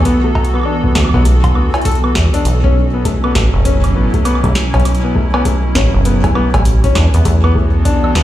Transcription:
Already playing: E3 B3 F#4 A4
0.05 B3, kick, closed hi-hat
0.24 A3
0.35 kick, cowbell
0.45 closed hi-hat
0.54 B3, high woodblock
0.56 high woodblock
0.60 high woodblock
0.61 high woodblock
0.63 D4, high woodblock
0.84 B3, kick
0.95 D2 A3, snare, high woodblock
1.00 high woodblock
1.05 high woodblock
1.09 high woodblock
1.14 B1 B3, kick
1.25 A3, closed hi-hat
1.44 kick, closed hi-hat, cowbell
1.55 D2 B3, high woodblock
1.74 E4, closed hi-hat, cowbell
1.82 A4, kick, closed hi-hat
1.85 closed hi-hat
1.91 closed hi-hat
1.95 closed hi-hat
2.04 B3, high woodblock
2.15 E2, kick, snare
2.34 D4, closed hi-hat
2.45 B1 B2, closed hi-hat
2.61 C#4, kick
2.70 F#3
2.75 C#4
2.94 B3
3.05 A3, kick, closed hi-hat
3.24 B3, high woodblock
3.35 A1 A3, kick, snare
3.45 E4
3.54 F#1
3.65 C#4, kick, closed hi-hat
3.84 C#4, closed hi-hat, high woodblock
3.95 A1 B3
4.14 A3, kick, closed hi-hat
4.25 B3, closed hi-hat, high woodblock
4.35 high woodblock
4.44 B1 A3, kick, closed hi-hat, high woodblock
4.55 snare
4.74 B1 C#4, kick, closed hi-hat, cowbell
4.80 closed hi-hat
4.85 C#4, closed hi-hat, high woodblock
4.95 closed hi-hat
5.04 B3
5.15 A3, kick
5.34 B3, cowbell, high woodblock
5.45 A3, kick, closed hi-hat
5.75 A1 C#4, kick, snare
5.94 F#1 C#4
6.05 B3, closed hi-hat
6.24 A3, kick, closed hi-hat, cowbell
6.35 B3, high woodblock
6.54 A1 A3, kick, closed hi-hat, cowbell
6.65 closed hi-hat
6.84 C#4, kick, closed hi-hat
6.95 E2 E3 D4, snare, high woodblock
7.14 E2 B3, closed hi-hat
7.25 E2 A3, kick, closed hi-hat
7.44 B3 F#4, high woodblock
7.51 A4
7.55 A3, kick
7.85 D4, kick, closed hi-hat
8.04 D4, high woodblock
8.15 D2 B3, snare

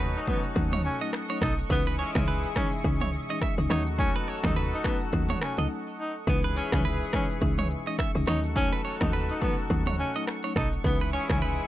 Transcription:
Already playing: D#2 C#4 D#4 F#4 A4 D#5 F#5 C#6
0.00 B4
0.15 D#4, shaker
0.27 F#3 A3 B3 C#4 D#4, kick, mid tom, shaker
0.44 shaker
0.55 D#2 F#3 A3 C#4 D#4, kick, shaker
0.72 C#5, mid tom, shaker
0.85 C#4, shaker
1.01 F#3 A3 C#4 D#4 D#5, shaker
1.13 finger snap, cross-stick, shaker
1.29 F#3 A3 C#4 D#4 C#5, shaker
1.42 B1 D#4 A4, finger snap, kick, cross-stick
1.58 shaker
1.70 C#2 E3 G#3 B3 C#4 D#4 E4 G#4 E5, kick, shaker
1.87 B4, shaker
1.99 C#4 C#5, shaker
2.15 C#2 E3 G#3 C#4 D#4, finger snap, kick, cross-stick, mid tom, shaker
2.27 B4, shaker
2.44 shaker
2.56 E3 G#3 C#4 D#4, finger snap, kick, cross-stick, mid tom, shaker
2.72 shaker
2.84 C#2 E3 G#3 C#4 D#4, kick, shaker
3.01 C#5, mid tom, shaker
3.13 shaker
3.29 E3 G#3 C#4 D#4 D#5, shaker
3.41 E5, finger snap, kick, cross-stick, shaker
3.58 C#2 E3 G#3 C#4 D#4, shaker
3.70 D#2 F#3 A3 C#4 D#4 F#4 A4 C#5 F#5, finger snap, cross-stick
3.87 shaker
3.98 F#3 A3 C#4 D#4, kick, shaker
4.16 B4, shaker
4.27 C#5, shaker
4.43 D#2 F#3 A3 C#4 D#4, finger snap, kick, cross-stick, mid tom, shaker
4.56 B4, shaker
4.72 D#4, shaker
4.84 F#3 A3 B3 C#4 D#4, finger snap, kick, cross-stick, shaker
5.01 shaker
5.13 D#2 F#3 A3 C#4 D#4, kick, shaker
5.29 C#5, mid tom, shaker
5.41 C#4, finger snap, cross-stick, shaker
5.58 C#2 F#3 A3 C#4 D#4 D#5, shaker
6.00 D#4
6.27 C#2 E3 G#3 B3 C#4 D#4 E4 G#4 B4 E5 C#6, kick, shaker
6.44 B4, shaker
6.56 C#4 C#5, shaker
6.72 C#2 E3 G#3 C#4 D#4, finger snap, kick, cross-stick, mid tom, shaker
6.85 B4, shaker
7.01 shaker
7.13 E3 G#3 C#4 D#4, finger snap, kick, cross-stick, mid tom, shaker
7.29 shaker
7.41 C#2 E3 G#3 C#4 D#4, kick, shaker
7.58 C#5, mid tom, shaker
7.71 shaker
7.86 E3 G#3 C#4 D#4 D#5, shaker
7.99 E5, finger snap, kick, cross-stick, shaker
8.15 C#2 E3 G#3 C#4 D#4, shaker
8.27 D#2 F#3 A3 C#4 D#4 F#4 A4 C#5 F#5, finger snap, cross-stick
8.44 shaker
8.56 F#3 A3 C#4 D#4, kick, shaker
8.73 B4, shaker
8.85 C#5, shaker
9.01 D#2 F#3 A3 C#4 D#4, finger snap, kick, cross-stick, mid tom, shaker
9.13 B4, shaker
9.29 D#4, shaker
9.41 F#3 A3 B3 C#4 D#4, kick, mid tom, shaker
9.58 shaker
9.70 D#2 F#3 A3 C#4 D#4, kick, shaker
9.86 C#5, mid tom, shaker
9.99 C#4, shaker
10.15 F#3 A3 C#4 D#4 D#5, shaker
10.27 finger snap, cross-stick, shaker
10.44 F#3 A3 C#4 D#4 C#5, shaker
10.56 B1 D#4 A4, finger snap, kick, cross-stick
10.72 shaker
10.84 C#2 E3 G#3 B3 C#4 D#4 E4 G#4 D#5 E5, kick, shaker
11.01 B4, shaker
11.13 C#4 C#5, shaker
11.29 C#2 E3 G#3 C#4 D#4, finger snap, kick, cross-stick, mid tom, shaker
11.42 B4, shaker
11.58 shaker

